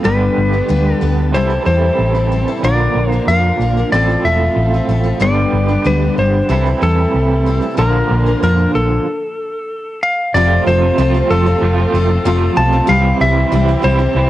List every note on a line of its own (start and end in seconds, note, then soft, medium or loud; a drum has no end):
0.04 0.27 G1 medium
0.04 0.53 G2 medium
0.04 0.53 D3 medium
0.04 0.53 G3 medium
0.04 0.53 B3 medium
0.04 1.34 B3 medium
0.04 0.52 D4 medium
0.04 1.34 D4 medium
0.04 1.34 G4 medium
0.04 0.96 B4 medium
0.04 0.51 B4 medium
0.04 1.34 B4 medium
0.37 0.60 G1 medium
0.53 0.68 G3 soft
0.53 0.69 B3 soft
0.53 0.69 D4 soft
0.53 0.69 B4 medium
0.68 0.92 D2 medium
0.68 1.01 G2 medium
0.68 1.02 D3 medium
0.68 1.00 G3 medium
0.68 1.01 B3 medium
0.68 1.01 D4 medium
0.68 1.02 B4 medium
0.96 1.34 A4 medium
1.01 1.35 D2 medium
1.01 1.34 G3 medium
1.01 1.34 B3 medium
1.01 1.35 D4 medium
1.01 1.35 B4 medium
1.34 1.57 C2 medium
1.34 1.51 C3 medium
1.34 2.62 E3 medium
1.34 1.51 G3 medium
1.34 1.50 C4 medium
1.34 2.63 C4 medium
1.34 1.49 E4 medium
1.34 2.63 E4 medium
1.34 2.63 G4 medium
1.34 2.63 A4 medium
1.34 1.48 A4 medium
1.34 1.65 C5 medium
1.49 1.65 C4 soft
1.49 1.66 E4 soft
1.49 1.66 A4 soft
1.65 1.89 E2 medium
1.65 2.15 G3 soft
1.65 2.15 C4 medium
1.65 2.14 E4 medium
1.65 2.13 A4 medium
1.65 2.59 C5 medium
1.99 2.44 A1 medium
2.15 2.31 C4 soft
2.15 2.32 E4 soft
2.15 2.31 A4 soft
2.32 2.48 G3 medium
2.32 2.48 C4 medium
2.32 2.47 E4 medium
2.32 2.47 A4 medium
2.48 2.64 C4 soft
2.48 2.64 E4 soft
2.48 2.64 A4 medium
2.63 2.86 A#1 medium
2.63 3.12 A#2 medium
2.63 3.12 D3 medium
2.63 3.12 F3 medium
2.63 3.92 A#3 medium
2.63 3.13 A#3 medium
2.63 3.92 D4 medium
2.63 3.11 D4 medium
2.63 3.90 F4 medium
2.63 3.92 A#4 medium
2.63 3.11 A#4 medium
2.63 3.11 D5 loud
2.95 3.18 A#1 medium
3.11 3.28 F3 soft
3.11 3.28 A#3 soft
3.11 3.28 D4 soft
3.11 3.28 A#4 soft
3.11 3.25 C5 loud
3.27 3.50 F2 medium
3.27 3.61 A#2 medium
3.27 3.61 D3 medium
3.27 3.59 F3 medium
3.27 3.60 A#3 medium
3.27 3.61 D4 medium
3.27 3.61 A#4 medium
3.27 3.89 F5 medium
3.59 3.82 A#1 medium
3.59 3.77 F3 medium
3.59 3.77 A#3 medium
3.59 3.77 D4 medium
3.59 3.76 A#4 medium
3.77 3.93 F3 soft
3.77 3.94 A#3 soft
3.77 3.94 D4 soft
3.77 3.93 A#4 soft
3.91 4.15 A1 medium
3.91 5.19 A2 medium
3.91 5.20 F3 medium
3.91 5.20 A3 medium
3.91 4.09 A3 medium
3.91 5.20 C4 medium
3.91 4.10 C4 medium
3.91 5.20 F4 medium
3.91 4.09 F4 medium
3.91 5.20 A4 medium
3.91 4.08 A4 medium
3.91 4.26 D5 medium
4.09 4.25 C4 soft
4.09 4.26 F4 soft
4.09 4.25 A4 soft
4.25 4.47 E1 medium
4.25 4.74 A3 medium
4.25 4.74 C4 medium
4.25 4.73 F4 medium
4.25 4.73 A4 medium
4.25 5.22 E5 medium
4.56 4.79 A1 medium
4.74 4.88 C4 soft
4.74 4.89 F4 soft
4.74 4.90 A4 soft
4.88 5.11 A1 medium
4.88 5.05 A3 medium
4.88 5.05 C4 medium
4.88 5.03 F4 medium
4.88 5.02 A4 medium
5.03 5.20 C4 soft
5.03 5.21 F4 soft
5.03 5.21 A4 medium
5.20 5.43 G1 medium
5.20 5.69 G2 medium
5.20 5.69 D3 medium
5.20 6.49 G3 medium
5.20 5.69 G3 medium
5.20 5.69 B3 medium
5.20 6.49 D4 medium
5.20 5.68 D4 medium
5.20 6.49 G4 medium
5.20 5.67 B4 medium
5.20 5.88 D5 medium
5.24 6.50 G4 medium
5.53 5.76 G1 medium
5.68 5.84 G3 soft
5.68 5.85 B3 soft
5.68 5.85 D4 soft
5.68 5.85 B4 soft
5.85 6.08 D2 medium
5.85 6.18 G2 medium
5.85 6.18 D3 medium
5.85 6.17 G3 medium
5.85 6.18 B3 medium
5.85 6.18 D4 medium
5.85 6.18 B4 medium
5.85 6.19 B4 medium
6.18 6.40 G1 medium
6.18 6.48 G3 medium
6.18 6.50 D4 medium
6.18 6.85 C5 medium
6.49 6.72 C2 medium
6.49 6.66 C3 medium
6.49 7.77 E3 medium
6.49 6.66 G3 medium
6.49 7.78 A3 medium
6.49 6.66 C4 medium
6.49 7.78 C4 medium
6.49 6.66 E4 medium
6.49 7.78 E4 medium
6.49 7.78 G4 medium
6.49 6.65 A4 medium
6.66 6.81 C4 soft
6.66 6.82 E4 soft
6.66 6.82 A4 medium
6.82 7.05 E2 medium
6.82 7.45 G3 medium
6.82 7.47 E4 medium
6.82 7.75 A4 medium
6.82 7.47 A4 medium
7.14 7.59 C2 medium
7.46 7.63 G3 soft
7.46 7.62 C4 medium
7.46 7.61 E4 medium
7.46 7.60 A4 medium
7.61 7.77 C4 soft
7.61 7.78 E4 soft
7.61 7.78 A4 soft
7.77 8.01 A#1 medium
7.77 8.26 A#2 medium
7.77 8.27 D3 medium
7.77 9.05 F3 medium
7.77 8.26 F3 medium
7.77 9.05 A#3 medium
7.77 8.26 A#3 medium
7.77 9.05 D4 medium
7.77 8.25 D4 medium
7.77 9.05 F4 medium
7.77 8.25 A#4 medium
7.77 8.42 A#4 medium
8.11 8.33 A#1 medium
8.26 8.42 F3 soft
8.26 8.42 A#3 soft
8.26 8.43 D4 soft
8.26 8.43 A#4 soft
8.43 8.65 F2 medium
8.43 8.75 A#2 medium
8.43 8.76 D3 medium
8.43 8.74 F3 medium
8.43 8.75 A#3 medium
8.43 8.75 D4 medium
8.43 8.75 A#4 medium
8.43 8.76 A#4 medium
8.75 8.97 A#1 medium
8.75 9.07 F3 medium
8.75 9.08 A#3 medium
8.75 9.08 D4 medium
8.75 9.99 A4 medium
10.03 10.33 F5 medium
10.34 10.57 F1 loud
10.34 10.97 F2 medium
10.34 10.97 C3 loud
10.34 12.87 F3 medium
10.34 10.65 F3 medium
10.34 12.87 A3 medium
10.34 10.83 A3 loud
10.34 12.87 C4 medium
10.34 10.66 C4 medium
10.34 12.87 F4 medium
10.34 10.67 F4 medium
10.34 10.67 A4 loud
10.34 10.67 D5 loud
10.66 10.89 F1 loud
10.66 10.97 F3 medium
10.66 10.97 C4 medium
10.66 10.98 F4 medium
10.66 10.98 A4 medium
10.66 11.33 C5 medium
10.81 10.98 F3 medium
10.81 10.99 A3 medium
10.81 11.00 C4 medium
10.81 11.00 F4 medium
10.98 11.20 C2 medium
10.98 11.62 F2 medium
10.98 11.62 C3 medium
10.98 11.14 F3 medium
10.98 11.31 A3 loud
10.98 11.14 C4 medium
10.98 11.15 F4 medium
10.98 11.13 A4 medium
11.14 11.30 C4 soft
11.14 11.31 F4 soft
11.14 11.30 A4 medium
11.30 11.53 F1 medium
11.30 11.46 F3 medium
11.30 11.47 A3 medium
11.30 11.47 C4 medium
11.30 11.45 F4 medium
11.30 12.61 A4 medium
11.30 11.45 A4 medium
11.46 11.93 C4 soft
11.46 11.94 F4 soft
11.46 11.94 A4 medium
11.46 muted clean electric guitar stroke soft
11.61 11.84 F1 medium
11.61 11.80 F3 medium
11.61 11.79 A3 medium
11.61 11.79 C4 medium
11.61 11.77 F4 medium
11.78 12.10 F3 medium
11.78 12.10 A3 medium
11.78 12.11 C4 medium
11.78 12.10 F4 medium
11.94 12.16 F1 medium
11.94 12.24 F3 medium
11.94 12.24 C4 medium
11.94 12.25 F4 medium
11.94 12.25 A4 medium
12.11 muted clean electric guitar stroke medium
12.25 12.48 F1 medium
12.25 12.87 F2 loud
12.25 12.88 C3 loud
12.25 12.55 F3 medium
12.25 12.58 A3 loud
12.25 12.56 C4 medium
12.25 12.57 F4 loud
12.25 12.57 A4 loud
12.56 12.79 B1 medium
12.56 12.73 F3 medium
12.56 12.74 A3 medium
12.56 12.73 C4 medium
12.56 12.72 F4 medium
12.56 12.71 A4 medium
12.56 12.90 A5 medium
12.72 12.89 F3 medium
12.72 12.88 A3 medium
12.72 12.86 C4 soft
12.72 12.89 F4 soft
12.72 12.88 A4 medium
12.87 13.11 C2 loud
12.87 13.20 C3 medium
12.87 13.52 E3 loud
12.87 14.30 E3 medium
12.87 13.19 G3 medium
12.87 14.30 G3 medium
12.87 13.20 C4 medium
12.87 14.30 C4 medium
12.87 13.20 G4 medium
12.87 14.30 G4 medium
12.87 13.19 F5 loud
12.91 13.38 C4 loud
12.91 13.35 E4 loud
13.21 13.43 C2 loud
13.21 13.51 G3 medium
13.21 13.51 C4 medium
13.21 13.51 E4 medium
13.21 13.52 G4 medium
13.21 13.86 E5 loud
13.37 13.53 G3 medium
13.37 13.54 C4 medium
13.37 13.54 E4 medium
13.52 13.74 C2 medium
13.52 13.68 C3 medium
13.52 13.83 E3 medium
13.52 13.68 G3 medium
13.52 13.68 C4 medium
13.52 13.68 E4 medium
13.52 13.67 G4 medium
13.68 13.82 C4 soft
13.68 13.83 E4 medium
13.68 13.83 G4 medium
13.82 14.06 C2 medium
13.82 14.01 E3 medium
13.82 13.99 G3 medium
13.82 13.99 C4 medium
13.82 13.98 E4 medium
13.82 13.97 G4 medium
13.82 14.30 C5 loud
13.88 14.00 E4 medium
13.98 14.30 C4 soft
13.98 14.30 E4 soft
13.98 14.30 G4 soft
13.98 muted clean electric guitar stroke soft
14.15 14.30 C2 medium
14.15 14.30 E3 medium
14.15 14.30 G3 medium
14.15 14.30 C4 medium
14.19 14.29 E4 medium